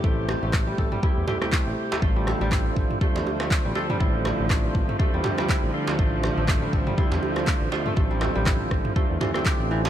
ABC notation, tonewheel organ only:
X:1
M:4/4
L:1/16
Q:"Swing 16ths" 1/4=121
K:Ddor
V:1 name="Tonewheel organ"
[A,EGc]8 [A,EGc]2 [A,EGc] [A,EGc]4- [A,EGc] | [A,DFc]8 [A,DFc]6 [A,DFc]2 | [A,DFc]8 [A,DFc]6 [A,DFc]2 | [A,DFc]8 [A,DFc]6 [A,DFc]2 |
[A,DFc]8 [A,DFc]2 [A,DFc] [A,DFc]4- [A,DFc] |]